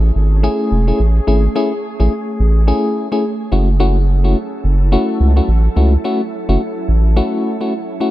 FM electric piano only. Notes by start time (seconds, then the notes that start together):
0.43 A3 C#4 E4 G#4
0.87 A3 C#4 E4 G#4
1.27 A3 C#4 E4 G#4
1.56 A3 C#4 E4 G#4
2.00 A3 C#4 E4 G#4
2.67 A3 C#4 E4 G#4
3.12 A3 C#4 E4 G#4
3.52 A3 C#4 E4 F#4
3.80 A3 C#4 E4 F#4
4.24 A3 C#4 E4 F#4
4.92 A3 C#4 E4 F#4
5.36 A3 C#4 E4 F#4
5.76 A3 C#4 E4 F#4
6.04 A3 C#4 E4 F#4
6.49 A3 C#4 E4 F#4
7.16 A3 C#4 E4 F#4
7.61 A3 C#4 E4 F#4
8.00 A3 C#4 E4 F#4